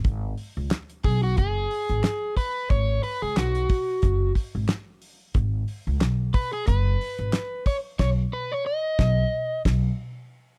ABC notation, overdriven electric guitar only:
X:1
M:4/4
L:1/16
Q:"Swing 16ths" 1/4=91
K:G#m
V:1 name="Overdriven electric guitar"
z6 G F G6 B2 | c2 B G F6 z6 | z6 B G B6 c2 | c2 B c d6 z6 |]